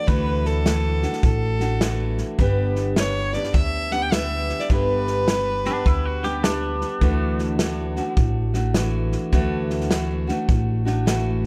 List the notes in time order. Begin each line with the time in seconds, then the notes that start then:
0.06 D2 D3 E3 A3 D4 F#4 B4, kick, snare
0.45 A4, snare
0.64 E3 A3 D4 F#4, snare, hi-hat pedal
1.02 A3 D4 F#4, snare
1.13 snare
1.23 A1 A4, kick, snare
1.60 A3 D4 F#4, snare
1.80 E3 A3 D4 F#4, snare, hi-hat pedal
2.18 snare
2.38 G1 G2 D3 G3 B3 D4 G4, kick, snare
2.76 snare
2.96 G3 B3 D4 G4 C#5, snare, hi-hat pedal
3.33 G3 B3 D4 G4 D5, snare
3.44 snare
3.54 D2 E5, kick, snare
3.91 G3 B3 D4 G4 F#5, snare
4.02 G5
4.12 G3 B3 D4 G4 E5, snare, hi-hat pedal
4.49 snare
4.59 D5, snare
4.70 G1 G2 D3 G3 B3 D4 G4 B4, kick, snare
5.07 snare
5.28 G3 B3 D4 G4, snare, hi-hat pedal
5.65 G3 B3 D4 G4, snare
5.86 D2 E4, kick, snare
6.05 F#4
6.23 G3 B3 D4 G4, snare
6.43 G3 B3 D4 G4, snare, hi-hat pedal
6.81 snare
7.01 D2 D3 E3 A3 D4 F#4, kick, snare
7.39 snare
7.59 E3 A3 D4 F#4, snare, hi-hat pedal
7.96 A3 D4 F#4, snare
8.17 A1, kick, snare
8.54 A3 D4 F#4, snare
8.74 E3 A3 D4 F#4, snare, hi-hat pedal
9.12 snare
9.32 D2 D3 E3 A3 D4 F#4, kick, snare
9.70 snare
9.81 snare
9.90 E3 A3 D4 F#4, snare, hi-hat pedal
10.27 A3 D4 F#4, snare
10.49 A1, kick, snare
10.85 A3 D4 F#4, snare
11.06 E3 A3 D4 F#4, snare, hi-hat pedal